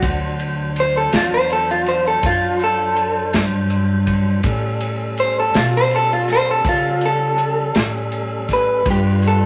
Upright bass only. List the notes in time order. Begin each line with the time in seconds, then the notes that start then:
0.03 D2
1.13 E2
2.23 F#2
3.34 G2
4.44 A2
5.55 B2
6.65 C#3
7.76 A2
8.86 G2